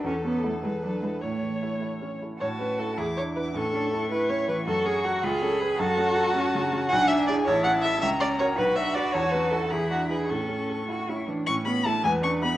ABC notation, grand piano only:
X:1
M:6/8
L:1/8
Q:3/8=106
K:A
V:1 name="Grand piano"
E,, C [EA] E,, D [EB] | A,, E, [EA] [EA] C [EA] | A,, C [EA] E,, D [EB] | A,, C A E C E, |
F,, C [FA] C,, C [GB] | F,, C A C C, C | B,,, D [EG] A,,, C [EA] | C,, C [F^A] B,,, D [FB] |
E,, C [EA] E,, D [EB] | A,, C A E C E, | A,, C [EA] E,, D [EB] |]